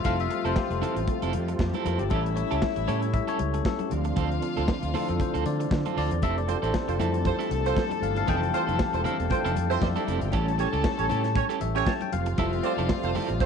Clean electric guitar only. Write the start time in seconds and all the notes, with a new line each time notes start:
0.05 C4 E4 A4
0.19 muted clean electric guitar stroke
0.30 muted clean electric guitar stroke
0.45 C4 E4 A4
0.71 muted clean electric guitar stroke
0.82 C4 E4 A4
0.96 muted clean electric guitar stroke
1.08 muted clean electric guitar stroke
1.22 C4 E4 A4
1.34 muted clean electric guitar stroke
1.49 muted clean electric guitar stroke
1.60 muted clean electric guitar stroke
1.75 C4 E4 A4
1.85 C4 E4 A4
2.00 muted clean electric guitar stroke
2.11 C#4 G4 A4
2.26 muted clean electric guitar stroke
2.37 muted clean electric guitar stroke
2.51 C#4 G4 A4
2.76 muted clean electric guitar stroke
2.88 C#4 G4 A4
3.02 muted clean electric guitar stroke
3.13 muted clean electric guitar stroke
3.28 C#4 G4 A4
3.39 muted clean electric guitar stroke
3.54 muted clean electric guitar stroke
3.65 muted clean electric guitar stroke
3.79 muted clean electric guitar stroke
4.05 muted clean electric guitar stroke
4.16 C4 F4 A4
4.31 muted clean electric guitar stroke
4.42 muted clean electric guitar stroke
4.57 C4 F4 A4
4.83 muted clean electric guitar stroke
4.94 C4 F4 A4
5.09 muted clean electric guitar stroke
5.20 muted clean electric guitar stroke
5.34 C4 F4 A4
5.45 muted clean electric guitar stroke
5.60 muted clean electric guitar stroke
5.71 muted clean electric guitar stroke
5.86 C4 F4 A4
5.97 C4 F4 A4
6.11 muted clean electric guitar stroke
6.23 C4 E4 A4
6.37 muted clean electric guitar stroke
6.49 muted clean electric guitar stroke
6.62 C4 E4 A4
6.88 muted clean electric guitar stroke
7.00 C4 E4 A4
7.14 muted clean electric guitar stroke
7.25 muted clean electric guitar stroke
7.39 C4 E4 A4
7.51 muted clean electric guitar stroke
7.65 muted clean electric guitar stroke
7.76 muted clean electric guitar stroke
7.91 muted clean electric guitar stroke
8.17 muted clean electric guitar stroke
8.27 C4 E4 A4
8.42 muted clean electric guitar stroke
8.53 muted clean electric guitar stroke
8.67 C4 E4 A4
8.93 muted clean electric guitar stroke
9.04 C4 E4 A4
9.19 muted clean electric guitar stroke
9.30 muted clean electric guitar stroke
9.45 C4 E4 A4
9.56 muted clean electric guitar stroke
9.70 muted clean electric guitar stroke
9.82 muted clean electric guitar stroke
9.96 C4 E4 A4
10.07 C4 E4 A4
10.21 muted clean electric guitar stroke
10.33 C#4 G4 A4
10.47 muted clean electric guitar stroke
10.58 muted clean electric guitar stroke
10.73 C#4 G4 A4
10.98 muted clean electric guitar stroke
11.10 C#4 G4 A4
11.24 muted clean electric guitar stroke
11.35 muted clean electric guitar stroke
11.49 C#4 G4 A4
11.75 muted clean electric guitar stroke
11.86 muted clean electric guitar stroke
12.01 muted clean electric guitar stroke
12.27 muted clean electric guitar stroke
12.38 C4 E4 A4
12.53 muted clean electric guitar stroke
12.64 muted clean electric guitar stroke
12.78 C4 E4 A4
13.04 muted clean electric guitar stroke
13.15 C4 E4 A4
13.30 muted clean electric guitar stroke
13.41 muted clean electric guitar stroke